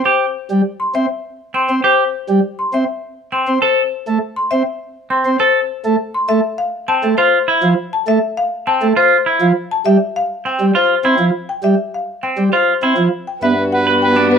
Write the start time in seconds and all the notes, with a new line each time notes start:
0.05 G4 C5
0.51 G3
0.80 C6
0.95 C4 E5
1.54 C4 C6
1.69 C4
1.84 G4 C5
2.29 G3
2.59 C6
2.73 C4 E5
3.32 C4 C6
3.48 C4
3.62 A4 C5
4.08 A3
4.36 C6
4.51 C4 E5
5.10 C4 C6
5.25 C4
5.39 A4 C5
5.85 A3
6.14 C6
6.29 A3 E5
6.58 F5
6.88 C4 A5
7.04 A3
7.18 F4 C5
7.48 E4
7.63 F3
7.93 A5
8.07 A3 E5
8.37 F5
8.67 C4 A5
8.82 A3
8.96 F4 C5
9.26 E4
9.41 F3
9.71 A5
9.86 G3 E5
10.16 F5
10.45 C4 G5
10.60 G3
10.75 F4 C5
11.04 C4 E4
11.19 F3
11.49 G5
11.63 G3 E5
11.94 F5
12.23 C4 G5
12.38 G3
12.53 F4 C5
12.83 C4 E4
12.97 F3
13.27 G5
13.42 G2 B3 F#4 B4 E5
13.72 B4 F#5
13.87 B4
14.02 B4 G5
14.16 B3 D4
14.31 B4